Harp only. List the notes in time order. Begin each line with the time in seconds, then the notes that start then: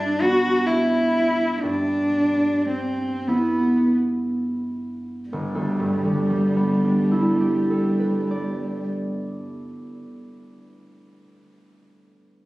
Already playing: G2 D4
0.22 B3 D4
1.63 G2
3.28 B3 E4
5.33 G1
5.55 D2
5.80 G2
6.05 D3
6.30 G3
6.57 B3
6.84 D4
7.11 E4
7.41 G4
7.70 A4
7.99 B4
8.31 D5